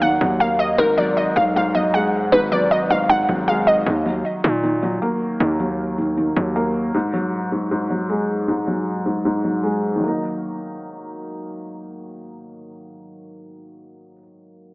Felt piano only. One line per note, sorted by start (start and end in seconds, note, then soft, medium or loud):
0.00 0.02 D#3 loud
0.00 0.79 D#3 medium
0.00 0.21 F#3 medium
0.00 0.40 A#3 medium
0.21 0.79 F#3 medium
0.40 0.79 A#3 medium
0.79 1.35 G#2 loud
0.98 1.73 F#3 medium
1.36 1.54 G#2 medium
1.56 2.31 G#2 loud
1.75 2.50 F#3 medium
1.94 2.90 G#3 medium
2.32 2.88 G#2 loud
2.52 3.27 F#3 medium
2.90 3.08 G#2 medium
3.09 3.86 G#2 medium
3.29 3.86 F#3 medium
3.48 3.86 G#3 medium
3.86 4.43 D#3 medium
4.06 4.81 F#3 medium
4.44 4.62 D#3 medium
4.63 5.39 D#3 medium
4.83 5.58 F#3 medium
5.02 5.98 A#3 medium
5.40 5.97 D#3 medium
5.60 6.35 F#3 medium
5.98 6.16 D#3 medium
6.17 6.94 D#3 medium
6.37 6.94 F#3 medium
6.56 6.94 A#3 medium
6.94 7.50 G#2 medium
7.13 7.89 F#3 medium
7.52 7.70 G#2 medium
7.71 8.46 G#2 loud
7.90 8.66 F#3 medium
8.09 9.06 G#3 medium
8.48 9.04 G#2 medium
8.67 9.43 F#3 medium
9.06 9.23 G#2 medium
9.25 10.02 G#2 medium
9.44 9.98 F#3 medium
9.63 10.02 G#3 medium
9.96 14.11 D#3 medium
9.96 14.15 F#3 medium
10.04 14.19 A#3 medium
10.04 14.23 D#4 medium